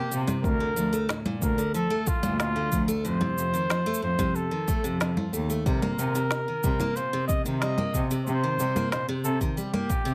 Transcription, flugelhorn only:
Already playing: G4
0.43 A#4
1.42 A#4
1.75 A4
2.08 F4
2.40 F4
3.05 C5
4.03 C5
4.35 A4
5.66 A#4
6.96 C5
7.28 D#5
7.61 D#5
8.25 C5
8.91 C5
9.24 A4
9.57 G4

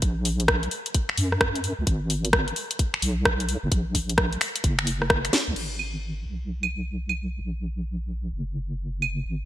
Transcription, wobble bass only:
0.02 A#1
1.18 F#2
1.79 C#2
1.87 G#1
3.02 B1
3.63 F#1
3.72 A#1
4.64 F#1
5.48 C#2
5.56 G#1
6.26 B1
7.41 A#1
8.33 F#1
9.25 G#1

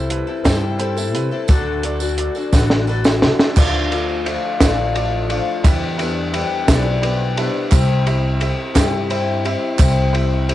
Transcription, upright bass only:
Already playing: C2
0.45 G2
1.14 C3
1.49 D2
2.52 A1
3.23 D3
3.57 D2
4.61 A1
5.65 E2
6.68 B1
7.72 C2
8.76 G2
9.79 C2

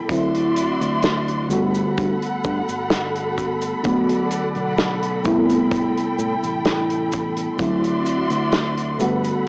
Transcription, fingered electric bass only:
0.81 D2
1.50 G1
1.98 G2
2.45 G2
2.68 G1
4.56 B1
5.25 A1
5.72 A2
6.19 A2
6.43 A1
8.31 D2
9.00 G1

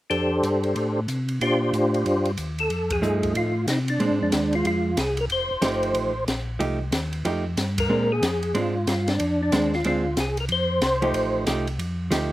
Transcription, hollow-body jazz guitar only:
3.02 F3 A3 D#4
4.00 G#3 C4 D4
5.62 F3 A3 D#4 G4
6.59 F3 A3 D#4 G4
7.25 F3 A3 D#4 G4
7.89 G#3 C4 D4
8.55 G#3 C4 D4
9.53 G#3 C4 D4
9.85 G#3 C4 D4
11.02 F3 A3 D#4 G4
11.46 F3 A3 D#4 G4
12.11 F3 A3 D#4 G4

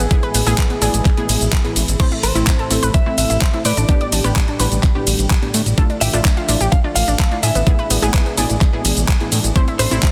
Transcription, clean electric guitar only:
Already playing: G#4
2.23 C5
2.94 E5
3.18 E5
3.65 D5
6.01 E5
6.72 F5
6.95 F5
7.43 E5
9.79 C5

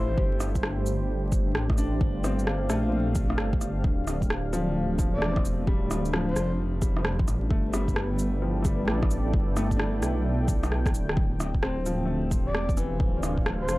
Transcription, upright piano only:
Already playing: E4 F4 A4 C5
0.17 G4
1.78 D4
2.24 C4
2.69 A3
2.89 C4
4.53 F3
4.98 F3
5.18 A3
5.32 C4
5.67 G3
6.13 F3
6.82 G3
7.50 A3
7.73 G3
7.93 B3
8.42 F3
8.62 G3 A3
8.75 B3
8.85 B3
8.98 D4
9.56 A3
9.77 D4
11.63 C4
11.86 F3
12.05 A3
12.77 E3

